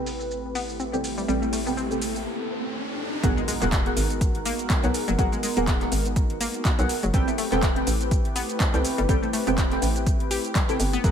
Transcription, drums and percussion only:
0.06 open hi-hat medium
0.06 shaker medium
0.21 shaker soft
0.31 shaker soft
0.55 open hi-hat loud
0.55 shaker medium
0.69 shaker soft
0.80 shaker soft
0.94 shaker soft
1.04 open hi-hat loud
1.04 shaker medium
1.18 shaker soft
1.29 shaker soft
1.42 shaker soft
1.53 open hi-hat medium
1.53 shaker medium
1.67 shaker soft
1.78 shaker soft
1.91 shaker soft
2.02 open hi-hat loud
2.02 shaker medium
2.16 shaker soft
3.24 kick loud
3.24 closed hi-hat medium
3.24 shaker soft
3.38 shaker soft
3.48 open hi-hat loud
3.48 shaker medium
3.62 clap soft
3.62 closed hi-hat medium
3.62 shaker soft
3.72 kick loud
3.72 clap loud
3.72 closed hi-hat medium
3.72 shaker soft
3.86 closed hi-hat soft
3.97 open hi-hat loud
3.97 shaker medium
4.10 closed hi-hat medium
4.10 shaker soft
4.21 kick loud
4.21 closed hi-hat medium
4.21 shaker soft
4.35 closed hi-hat soft
4.45 open hi-hat loud
4.45 shaker medium
4.59 closed hi-hat medium
4.59 shaker soft
4.70 kick loud
4.70 clap loud
4.70 closed hi-hat medium
4.70 shaker soft
4.84 closed hi-hat soft
4.84 shaker soft
4.94 open hi-hat loud
4.94 shaker medium
5.08 closed hi-hat medium
5.08 shaker soft
5.19 kick loud
5.19 closed hi-hat medium
5.19 shaker soft
5.33 shaker soft
5.43 open hi-hat loud
5.43 shaker medium
5.57 closed hi-hat medium
5.57 shaker soft
5.67 kick loud
5.67 clap loud
5.67 closed hi-hat medium
5.67 shaker soft
5.81 clap soft
5.81 closed hi-hat soft
5.92 open hi-hat loud
5.92 shaker medium
6.06 closed hi-hat medium
6.06 shaker soft
6.16 kick loud
6.16 closed hi-hat medium
6.16 shaker soft
6.30 closed hi-hat soft
6.41 open hi-hat loud
6.41 shaker medium
6.54 closed hi-hat medium
6.54 shaker soft
6.65 kick loud
6.65 clap loud
6.65 closed hi-hat medium
6.65 shaker soft
6.79 closed hi-hat soft
6.79 shaker soft
6.89 open hi-hat loud
6.89 shaker medium
7.03 closed hi-hat medium
7.03 shaker soft
7.14 kick loud
7.14 closed hi-hat medium
7.14 shaker soft
7.28 shaker soft
7.38 open hi-hat loud
7.38 shaker medium
7.52 clap soft
7.52 closed hi-hat medium
7.52 shaker soft
7.63 kick loud
7.63 clap loud
7.63 closed hi-hat medium
7.63 shaker soft
7.76 closed hi-hat soft
7.87 open hi-hat loud
7.87 shaker medium
8.01 closed hi-hat medium
8.01 shaker soft
8.11 kick loud
8.11 closed hi-hat medium
8.11 shaker soft
8.25 closed hi-hat soft
8.36 open hi-hat loud
8.36 shaker medium
8.49 closed hi-hat medium
8.49 shaker soft
8.60 kick loud
8.60 clap loud
8.60 closed hi-hat medium
8.60 shaker soft
8.74 closed hi-hat soft
8.74 shaker soft
8.85 open hi-hat loud
8.85 shaker medium
8.98 closed hi-hat medium
8.98 shaker soft
9.09 kick loud
9.09 closed hi-hat medium
9.09 shaker soft
9.23 shaker soft
9.33 open hi-hat loud
9.33 shaker medium
9.47 closed hi-hat medium
9.47 shaker soft
9.58 kick loud
9.58 clap loud
9.58 closed hi-hat medium
9.58 shaker soft
9.72 clap soft
9.72 closed hi-hat soft
9.82 open hi-hat loud
9.82 shaker medium
9.96 closed hi-hat medium
9.96 shaker soft
10.06 kick loud
10.06 closed hi-hat medium
10.06 shaker soft
10.20 closed hi-hat soft
10.31 open hi-hat loud
10.31 shaker medium
10.45 closed hi-hat medium
10.45 shaker soft
10.55 kick loud
10.55 clap loud
10.55 closed hi-hat medium
10.55 shaker soft
10.69 closed hi-hat soft
10.69 shaker soft
10.80 open hi-hat loud
10.80 shaker medium
10.93 closed hi-hat medium
10.93 shaker soft
11.04 kick loud
11.04 closed hi-hat medium
11.04 shaker soft

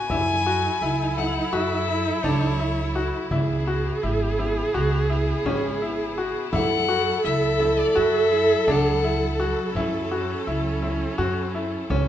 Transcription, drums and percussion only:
0.10 frame drum medium
1.17 frame drum soft
1.53 frame drum soft
2.24 frame drum medium
3.31 frame drum medium
4.39 frame drum soft
4.74 frame drum soft
5.46 frame drum medium
6.53 frame drum medium
7.60 frame drum soft
7.96 frame drum soft
8.67 frame drum medium
9.75 frame drum soft
10.83 frame drum soft
11.54 frame drum soft
11.90 frame drum soft

